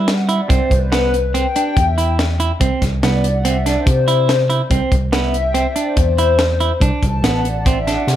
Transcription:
0.00 0.39 G3 medium
0.08 0.23 F#5 medium
0.08 snare loud
0.08 closed hi-hat medium
0.23 0.36 E5 medium
0.29 0.40 E4 medium
0.29 closed hi-hat medium
0.37 0.51 D5 medium
0.49 0.59 C2 medium
0.49 0.72 C4 medium
0.49 0.73 C5 medium
0.49 kick loud
0.49 closed hi-hat medium
0.71 1.44 C2 medium
0.71 1.11 B4 medium
0.71 kick medium
0.71 closed hi-hat medium
0.92 1.15 B3 medium
0.92 snare loud
0.92 closed hi-hat medium
1.14 closed hi-hat medium
1.34 1.46 C4 medium
1.34 1.79 G5 loud
1.34 closed hi-hat medium
1.56 1.79 D4 medium
1.56 closed hi-hat medium
1.77 2.50 E2 medium
1.77 1.97 E5 medium
1.77 kick medium
1.77 closed hi-hat medium
1.98 2.20 E4 medium
1.98 closed hi-hat medium
2.19 snare loud
2.19 closed hi-hat medium
2.40 2.51 E4 medium
2.40 closed hi-hat medium
2.60 2.70 C2 medium
2.60 2.83 C4 medium
2.60 kick loud
2.60 closed hi-hat medium
2.82 3.00 C2 medium
2.82 kick medium
2.82 snare soft
2.82 closed hi-hat medium
3.02 3.76 C2 medium
3.02 3.26 B3 medium
3.02 3.32 D5 medium
3.02 snare medium
3.02 closed hi-hat medium
3.24 closed hi-hat medium
3.31 3.46 F#5 loud
3.45 3.56 C4 medium
3.45 3.59 E5 medium
3.45 closed hi-hat medium
3.60 3.74 D5 medium
3.66 3.89 D4 medium
3.66 snare soft
3.66 closed hi-hat medium
3.73 4.32 C5 medium
3.86 4.60 C3 medium
3.86 kick loud
3.86 closed hi-hat medium
4.08 4.31 E4 medium
4.08 closed hi-hat medium
4.29 snare loud
4.29 closed hi-hat medium
4.50 4.61 E4 medium
4.50 closed hi-hat medium
4.70 4.80 C2 medium
4.70 4.94 C4 medium
4.70 kick loud
4.70 closed hi-hat medium
4.91 5.65 C2 medium
4.91 kick medium
4.91 closed hi-hat medium
5.12 5.35 B3 medium
5.12 5.43 E5 medium
5.12 snare loud
5.12 closed hi-hat medium
5.34 closed hi-hat medium
5.42 5.56 G5 loud
5.54 5.66 C4 medium
5.54 5.63 E5 medium
5.54 closed hi-hat medium
5.70 5.84 D5 medium
5.76 5.99 D4 medium
5.76 closed hi-hat medium
5.84 6.43 C5 medium
5.96 6.70 E2 medium
5.96 kick loud
5.96 closed hi-hat medium
6.18 6.41 E4 medium
6.18 closed hi-hat medium
6.39 snare loud
6.39 closed hi-hat medium
6.60 6.72 E4 medium
6.60 closed hi-hat medium
6.81 6.90 C2 medium
6.81 7.04 D4 medium
6.81 kick loud
6.81 closed hi-hat medium
7.03 7.21 C2 medium
7.03 7.25 A5 loud
7.03 kick medium
7.03 closed hi-hat medium
7.22 7.96 A1 medium
7.22 7.46 B3 medium
7.22 7.44 F#5 medium
7.22 snare loud
7.22 closed hi-hat medium
7.45 7.67 D5 medium
7.45 closed hi-hat medium
7.66 7.78 C4 medium
7.66 7.88 E5 medium
7.66 kick medium
7.66 closed hi-hat medium
7.87 8.10 D4 medium
7.87 8.09 F#5 medium
7.87 snare soft
7.87 closed hi-hat medium
8.07 8.16 C3 medium
8.07 8.16 D5 medium
8.07 snare soft
8.07 closed hi-hat medium

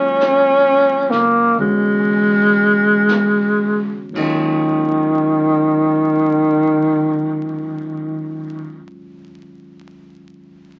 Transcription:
0.00 1.07 D#2 medium
0.00 1.56 F#3 medium
0.00 1.57 G#3 soft
0.00 1.59 A#3 medium
0.00 1.12 C#4 loud
0.00 1.59 C#4 medium
0.00 1.62 F4 medium
0.21 brush sweep soft
0.21 snare soft
0.21 hi-hat pedal medium
1.10 1.55 C#2 medium
1.10 1.58 A#3 medium
1.10 snare soft
1.57 4.12 E2 medium
1.57 4.15 D3 soft
1.57 4.15 G#3 soft
1.57 4.00 G#3 medium
1.57 4.16 B3 soft
1.57 4.16 C#4 soft
1.57 brush sweep soft
1.61 4.17 F#4 soft
3.09 brush sweep soft
3.09 snare soft
3.09 hi-hat pedal soft
4.10 8.78 D#2 medium
4.10 8.81 D#3 soft
4.15 8.79 D#2 medium
4.15 8.80 D#3 medium
4.15 8.82 F#3 soft
4.15 8.85 G#3 soft
4.15 kick soft
4.15 crash medium
4.20 8.87 C#4 soft
4.20 8.90 F4 medium

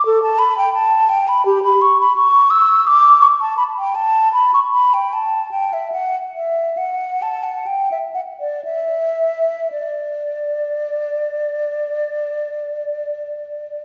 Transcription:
0.06 0.22 A4 medium
0.23 0.40 A5 medium
0.39 0.57 B5 medium
0.58 0.73 G5 medium
0.74 1.11 A5 medium
1.09 1.29 G5 medium
1.28 1.45 B5 medium
1.46 1.62 G4 medium
1.63 1.83 B5 medium
1.82 1.98 C#6 medium
2.01 2.15 B5 medium
2.16 2.52 C#6 medium
2.50 2.88 E6 medium
2.87 3.20 D6 medium
3.21 3.27 C#6 medium
3.41 3.57 A5 medium
3.57 3.63 B5 medium
3.78 3.97 G5 medium
3.95 4.32 A5 medium
4.33 4.52 B5 medium
4.54 4.60 C#6 medium
4.72 4.95 B5 medium
4.94 5.15 G5 medium
5.13 5.51 A5 medium
5.51 5.75 G5 medium
5.73 5.91 E5 medium
5.92 6.16 F#5 medium
6.35 6.79 E5 medium
6.77 7.24 F#5 medium
7.22 7.45 A5 medium
7.44 7.68 F#5 medium
7.67 7.90 G5 medium
7.92 7.98 E5 medium
8.14 8.20 F#5 medium
8.40 8.64 D5 medium
8.65 9.68 E5 medium
9.72 13.85 D5 medium

